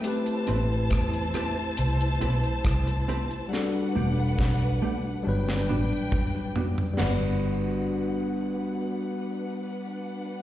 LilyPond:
<<
  \new Staff \with { instrumentName = "String section" } { \time 4/4 \key g \major \tempo 4 = 69 <e' c'' a''>1 | <d' b' fis''>2 <d' b' g''>2 | <d' b' fis''>1 | }
  \new Staff \with { instrumentName = "Clean electric guitar" } { \time 4/4 \key g \major r8 <c' g' b'>8 r8 <c' g' b'>8 r8 <c' g' b'>8 r8 <c' g' b'>8 | r8 <a d' g'>8 r8 <a d' g'>8 r8 <b d' fis'>8 r8 <b d' fis'>8 | <b d' fis'>1 | }
  \new Staff \with { instrumentName = "Tine electric piano" } { \time 4/4 \key g \major <a c' g' b'>1 | <g d' fis' a'>2 <fis g d' b'>2 | <g d' fis' b'>1 | }
  \new Staff \with { instrumentName = "Fingered electric bass" } { \clef bass \time 4/4 \key g \major r8 a,,8 e,8 r8 c,8 b,,16 r16 c,8. r16 | r8 e,,8 b,,8 r8 g,,8 a,,16 r4 r16 | g,,1 | }
  \new DrumStaff \with { instrumentName = "Drums" } \drummode { \time 4/4 hh16 hh16 hh8 <hh bd ss>16 hh16 <hh ss>8 hh16 hh16 hh16 hh16 <hh bd ss>16 hh16 hh16 hh16 | sn4 <bd sn>4 r16 sn8. <bd tomfh>8 tomfh16 tomfh16 | <rb sn tomfh>4 r4 r4 r4 | }
>>